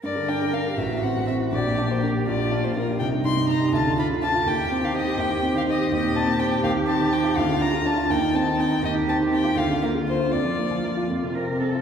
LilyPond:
<<
  \new Staff \with { instrumentName = "Violin" } { \time 6/8 \key g \minor \tempo 4. = 81 d''8 g''8 f''8 e''8 fis''8 e''8 | d''8. c''16 bes'8 d''8. c''16 bes'8 | g''8 c'''8 bes''8 a''8 b''8 a''8 | g''8. f''16 ees''8 g''8. f''16 ees''8 |
\key bes \major ees''8 a''8 g''8 f''8 a''8 g''8 | f''8 bes''8 a''8 g''8 a''8 g''8 | ees''8 a''8 g''8 f''8 bes'8 c''8 | d''4. r4. | }
  \new Staff \with { instrumentName = "Cello" } { \time 6/8 \key g \minor bes'4. fis'4. | g'4. f'4. | ees'4. f'4. | g'2. |
\key bes \major g'2. | f'4. ees'4. | g'4. f'4. | f'4. f'8 bes'8 a'8 | }
  \new Staff \with { instrumentName = "Grand piano" } { \clef bass \time 6/8 \key g \minor g,16 d16 d'16 d16 d'16 g'16 a,,16 a,16 c'16 a,16 c'16 fis'16 | bes,,16 bes,16 d'16 bes,16 d'16 g'16 bes,,16 bes,16 d'16 bes,16 d'16 g'16 | c,16 g,16 ees'16 g,16 ees'16 g'16 d,16 d16 d'16 d16 d'16 f'16 | ees,16 ees16 c'16 ees16 c'16 g'16 ees,16 ees16 c'16 ees16 c'16 g'16 |
\key bes \major ees,16 bes,16 c'16 bes,16 c'16 g'16 ees,16 ees16 c'16 ees16 c'16 f'16 | d,16 d16 d'16 d16 d'16 f'16 ees,16 ees16 c'16 ees16 c'16 ees'16 | ees,16 ees16 c'16 ees16 c'16 f'16 d,16 d16 bes16 d16 bes16 f'16 | f,16 f16 bes16 f16 bes16 f'16 f,16 c16 c'16 c16 c'16 f'16 | }
>>